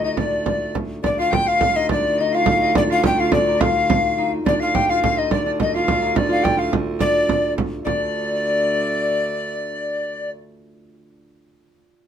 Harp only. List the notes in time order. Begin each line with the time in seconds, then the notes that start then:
Already playing: F4 G4
0.04 D#4
0.19 D4
1.06 D4
1.19 F4
1.48 F4
1.76 D#4
1.91 D4
2.07 D4
2.20 D#4
2.34 F4
2.76 D4
2.90 F4
3.21 F4
3.33 D4
3.47 D#4
3.61 F4
4.18 D#4
4.48 D4
4.63 F4
4.76 G4
4.90 F4
5.18 D#4
5.32 D4
5.46 D4
5.76 F4
5.84 F4
5.92 F4
6.01 D#4
6.15 D4
6.29 F4
6.42 G4
6.57 F4
6.99 D4
7.85 D4